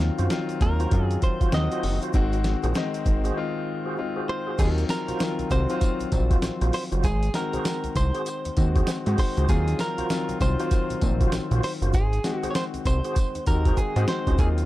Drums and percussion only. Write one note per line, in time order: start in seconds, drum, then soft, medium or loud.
0.00 shaker soft
0.19 closed hi-hat medium
0.19 shaker medium
0.30 snare loud
0.30 closed hi-hat medium
0.30 shaker medium
0.49 closed hi-hat soft
0.49 shaker soft
0.61 kick medium
0.61 closed hi-hat medium
0.61 shaker medium
0.80 closed hi-hat soft
0.80 shaker soft
0.91 kick medium
0.91 closed hi-hat medium
0.91 shaker medium
1.11 closed hi-hat medium
1.11 shaker soft
1.22 kick medium
1.22 closed hi-hat medium
1.22 shaker medium
1.41 kick loud
1.41 closed hi-hat medium
1.41 shaker soft
1.52 snare medium
1.52 closed hi-hat medium
1.52 shaker medium
1.72 closed hi-hat medium
1.72 shaker soft
1.83 open hi-hat medium
2.02 closed hi-hat soft
2.02 shaker medium
2.13 kick loud
2.13 closed hi-hat medium
2.13 shaker medium
2.33 closed hi-hat soft
2.33 shaker soft
2.44 snare medium
2.44 closed hi-hat medium
2.44 shaker soft
2.63 closed hi-hat medium
2.63 shaker medium
2.75 snare loud
2.75 closed hi-hat medium
2.75 shaker medium
2.94 closed hi-hat soft
2.94 shaker soft
3.06 kick medium
3.06 closed hi-hat medium
3.06 shaker medium
3.24 closed hi-hat medium
3.24 shaker soft
4.59 kick loud
4.59 closed hi-hat medium
4.59 crash loud
4.59 tambourine medium
4.59 shaker medium
4.78 closed hi-hat soft
4.78 shaker soft
4.89 snare medium
4.89 closed hi-hat medium
4.89 tambourine medium
4.89 shaker medium
5.08 closed hi-hat medium
5.08 shaker medium
5.20 snare loud
5.20 closed hi-hat medium
5.20 tambourine medium
5.20 shaker medium
5.39 closed hi-hat soft
5.39 shaker soft
5.51 kick medium
5.51 closed hi-hat medium
5.51 tambourine medium
5.51 shaker medium
5.69 closed hi-hat medium
5.69 shaker soft
5.81 kick medium
5.81 closed hi-hat medium
5.81 tambourine medium
5.81 shaker medium
6.00 closed hi-hat medium
6.00 shaker soft
6.12 kick loud
6.12 closed hi-hat medium
6.12 tambourine medium
6.31 kick loud
6.31 closed hi-hat medium
6.31 shaker soft
6.42 snare medium
6.42 closed hi-hat medium
6.42 tambourine medium
6.42 shaker medium
6.61 closed hi-hat medium
6.61 shaker soft
6.73 open hi-hat medium
6.73 shaker medium
6.92 closed hi-hat medium
6.92 shaker medium
7.03 kick loud
7.03 closed hi-hat medium
7.03 tambourine medium
7.03 shaker medium
7.23 closed hi-hat soft
7.23 shaker soft
7.34 snare medium
7.34 closed hi-hat medium
7.34 tambourine medium
7.34 shaker soft
7.53 closed hi-hat medium
7.53 shaker medium
7.65 snare loud
7.65 closed hi-hat medium
7.65 tambourine loud
7.65 shaker medium
7.84 closed hi-hat soft
7.84 shaker soft
7.96 kick medium
7.96 closed hi-hat medium
7.96 tambourine medium
7.96 shaker medium
8.14 closed hi-hat soft
8.14 shaker soft
8.26 closed hi-hat medium
8.26 tambourine medium
8.26 shaker medium
8.45 closed hi-hat medium
8.45 shaker soft
8.57 kick loud
8.57 closed hi-hat medium
8.57 tambourine medium
8.76 kick loud
8.76 closed hi-hat medium
8.76 shaker soft
8.87 snare loud
8.87 closed hi-hat medium
8.87 tambourine medium
8.87 shaker medium
9.06 closed hi-hat medium
9.06 shaker soft
9.18 kick medium
9.18 open hi-hat medium
9.18 shaker medium
9.37 closed hi-hat medium
9.37 shaker medium
9.49 kick loud
9.49 closed hi-hat medium
9.49 tambourine medium
9.49 shaker medium
9.68 closed hi-hat medium
9.68 shaker soft
9.79 snare medium
9.79 closed hi-hat medium
9.79 tambourine medium
9.79 shaker medium
9.98 closed hi-hat medium
9.98 shaker medium
10.10 snare loud
10.10 closed hi-hat medium
10.10 tambourine medium
10.10 shaker medium
10.29 closed hi-hat soft
10.29 shaker soft
10.41 kick medium
10.41 closed hi-hat medium
10.41 tambourine medium
10.41 shaker medium
10.60 closed hi-hat soft
10.60 shaker soft
10.71 kick loud
10.71 closed hi-hat medium
10.71 tambourine medium
10.71 shaker medium
10.90 closed hi-hat medium
10.90 shaker soft
11.02 kick loud
11.02 closed hi-hat medium
11.02 tambourine medium
11.21 kick medium
11.21 closed hi-hat medium
11.21 shaker soft
11.32 snare loud
11.32 closed hi-hat medium
11.32 tambourine medium
11.32 shaker medium
11.51 closed hi-hat medium
11.51 shaker medium
11.63 open hi-hat medium
11.63 shaker medium
11.82 closed hi-hat medium
11.82 shaker medium
11.93 kick loud
11.93 closed hi-hat medium
11.93 tambourine medium
11.93 shaker medium
12.13 closed hi-hat medium
12.13 shaker soft
12.24 snare medium
12.24 closed hi-hat medium
12.24 tambourine medium
12.24 shaker medium
12.43 closed hi-hat medium
12.43 shaker medium
12.55 snare loud
12.55 closed hi-hat medium
12.55 tambourine medium
12.55 shaker medium
12.74 closed hi-hat soft
12.74 shaker soft
12.85 kick medium
12.85 closed hi-hat medium
12.85 tambourine medium
12.85 shaker medium
13.04 closed hi-hat medium
13.04 shaker soft
13.16 kick loud
13.16 closed hi-hat medium
13.16 tambourine medium
13.16 shaker medium
13.35 closed hi-hat medium
13.35 shaker soft
13.46 kick medium
13.46 closed hi-hat medium
13.46 tambourine medium
13.46 shaker medium
13.65 kick loud
13.65 closed hi-hat medium
13.65 shaker soft
13.77 kick medium
13.77 closed hi-hat medium
13.77 shaker medium
13.96 closed hi-hat medium
13.96 shaker medium
14.08 snare loud
14.08 closed hi-hat medium
14.08 shaker medium
14.27 kick medium
14.27 closed hi-hat medium
14.27 shaker medium
14.38 kick loud
14.38 closed hi-hat medium
14.38 tambourine medium
14.38 shaker medium
14.58 closed hi-hat medium
14.58 shaker soft